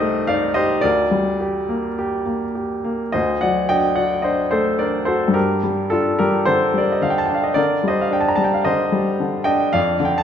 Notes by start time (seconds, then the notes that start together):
Already playing: C2 G3 D#4 G4 A#4 C5 D5 D#5 F5
0.02 A3
0.27 D#4 D5 F5
0.54 G4 C5 D#5
0.81 D2 A#4 D5
1.11 G3
1.41 G4
1.69 A#3
1.99 G4
2.26 A#3
2.55 G4
2.84 A#3
3.12 D2 C5 D#5
3.41 F#3 D5 F#5
3.69 D4 D#5 G5
3.96 F#4 D5 F#5
4.22 D4 C5 D#5
4.51 A3 A4 C5
4.79 D4 A#4 D5
5.05 F#4 A4 C5
5.28 G2
5.34 G4 A#4
5.63 G3
5.90 D4 F4 A4
6.19 G3 G4 A#4
6.45 D3 A4 C5
6.74 G3
6.78 A#4 D5
6.92 D#5
7.02 D3 F5
7.10 G5
7.18 A5
7.26 D4 G5
7.34 F5
7.44 D#5
7.54 D3 A#4 D5
7.83 G3
7.88 C5 D#5
8.01 F5
8.11 D4 G5
8.21 A5
8.28 A#5
8.36 G3 A5
8.44 G5
8.54 F5
8.65 D3 C5 D#5
8.92 G3
9.20 D3
9.44 D4 D#5 G5
9.73 F2 D5 F5
10.00 D3
10.05 G5
10.18 A5